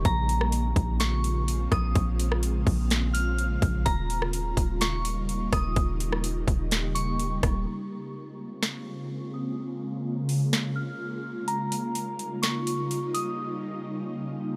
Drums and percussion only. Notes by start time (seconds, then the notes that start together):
0.05 kick, closed hi-hat
0.29 closed hi-hat
0.41 cross-stick
0.52 closed hi-hat
0.76 kick, closed hi-hat
1.00 snare, closed hi-hat
1.24 closed hi-hat
1.48 closed hi-hat
1.72 kick, cross-stick, closed hi-hat
1.95 kick, closed hi-hat
2.20 closed hi-hat
2.32 cross-stick
2.43 closed hi-hat
2.67 kick, open hi-hat
2.90 snare, closed hi-hat
3.15 closed hi-hat
3.39 closed hi-hat
3.62 kick, closed hi-hat
3.86 kick, closed hi-hat
4.10 closed hi-hat
4.22 cross-stick
4.33 closed hi-hat
4.57 kick, closed hi-hat
4.81 snare, closed hi-hat
5.05 closed hi-hat
5.29 closed hi-hat
5.53 kick, cross-stick, closed hi-hat
5.76 kick, closed hi-hat
6.00 closed hi-hat
6.13 cross-stick
6.24 closed hi-hat
6.48 kick, closed hi-hat
6.71 snare, closed hi-hat
6.96 closed hi-hat
7.20 closed hi-hat
7.43 kick, cross-stick, closed hi-hat
8.63 snare
10.29 open hi-hat
10.53 snare
11.48 closed hi-hat
11.72 closed hi-hat
11.95 closed hi-hat
12.19 closed hi-hat
12.43 snare, closed hi-hat
12.67 closed hi-hat
12.91 closed hi-hat
13.15 closed hi-hat